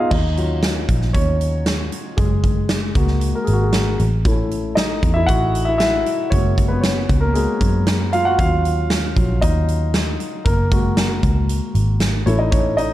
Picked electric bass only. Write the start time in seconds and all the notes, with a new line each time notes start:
0.11 D#2
0.89 A#1
1.14 D#2
2.18 F#1
2.96 C#2
3.48 G#1
4.00 A1
5.03 E2
5.28 A1
6.32 F#1
7.09 C#2
7.61 F#2
8.39 D#2
9.17 A#1
9.42 D#2
10.46 F#1
11.23 C#2
11.75 G#1
12.27 A1